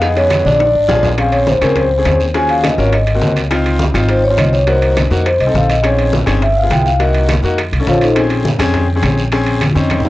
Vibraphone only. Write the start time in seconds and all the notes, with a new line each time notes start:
0.02 D#5
0.16 C#5
0.45 D5
1.19 F5
1.32 C#5
1.48 C5
1.62 A#4
1.77 C5
2.35 G#5
2.50 F5
2.64 D#5
2.79 C#5
2.93 D#5
4.10 C5
4.24 C#5
4.38 D#5
4.53 C#5
4.68 C5
5.26 C5
5.41 D#5
5.56 F5
5.70 D#5
5.85 C#5
6.42 E5
6.57 F5
6.71 G5
6.86 F5
7.01 D#5
7.88 F4 C5 C#5 F5
8.02 D#4 A4 C5 D#5